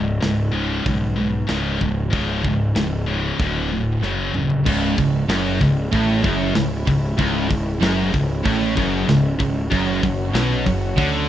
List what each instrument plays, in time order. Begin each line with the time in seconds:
Already playing: picked electric bass C#1, distorted electric guitar C#2 G#2
0.20 picked electric bass C#1, distorted electric guitar C#2 G#2, snare, open hi-hat
0.52 distorted electric guitar C#2 G#2 C#3
0.84 picked electric bass B1, distorted electric guitar C#2 G#2, kick, open hi-hat
1.16 distorted electric guitar C#2 G#2
1.47 picked electric bass C#1, distorted electric guitar C#2 G#2 C#3, snare, open hi-hat
1.78 picked electric bass C#1, distorted electric guitar C#2 G#2, kick
2.10 picked electric bass C#1, distorted electric guitar C#2 G#2 C#3, kick, open hi-hat
2.43 picked electric bass C#1, distorted electric guitar C#2 G#2, kick
2.74 picked electric bass C#1, distorted electric guitar C#2 G#2, snare, open hi-hat
3.06 distorted electric guitar C#2 G#2 C#3
3.39 picked electric bass D1, distorted electric guitar D2 A2 D3, kick, open hi-hat
3.71 distorted electric guitar D2 A2
4.02 picked electric bass F#1, distorted electric guitar F#2 C#3 F#3, snare
4.34 picked electric bass D1, distorted electric guitar F#2 C#3, mid tom
4.50 floor tom
4.66 picked electric bass C#1, distorted electric guitar C#2, string section G#3 C#4 E4, kick, crash
4.97 picked electric bass C#1, distorted electric guitar C#2, kick, open hi-hat
5.27 picked electric bass F#1, distorted electric guitar F#2, snare, open hi-hat
5.61 picked electric bass C#1, distorted electric guitar C#2, kick, open hi-hat
5.93 picked electric bass A1, distorted electric guitar A2, kick, open hi-hat
6.24 picked electric bass F#1, distorted electric guitar F#2, kick, open hi-hat
6.55 picked electric bass C#1, distorted electric guitar C#2, snare, open hi-hat
6.87 picked electric bass C#1, distorted electric guitar C#2, kick, open hi-hat
7.18 picked electric bass C#1, distorted electric guitar C#2, kick, open hi-hat
7.49 picked electric bass C#1, distorted electric guitar C#2, kick, open hi-hat
7.81 picked electric bass F#1, distorted electric guitar F#2, snare, open hi-hat
8.13 picked electric bass C#1, distorted electric guitar C#2, kick, open hi-hat
8.45 picked electric bass A1, distorted electric guitar A2, kick, open hi-hat
8.76 picked electric bass F#1, distorted electric guitar F#2, kick, open hi-hat
9.07 picked electric bass C#1, distorted electric guitar C#2, snare, open hi-hat
9.39 picked electric bass C#1, distorted electric guitar C#2, kick, open hi-hat
9.70 picked electric bass F#1, distorted electric guitar F#2, string section F#3 F#4, kick, open hi-hat
10.03 picked electric bass F#1, distorted electric guitar F#2, kick, open hi-hat
10.34 picked electric bass B1, distorted electric guitar B2, snare, open hi-hat
10.66 picked electric bass F#1, distorted electric guitar F#2, kick, open hi-hat
10.97 picked electric bass D2, distorted electric guitar D3, kick, open hi-hat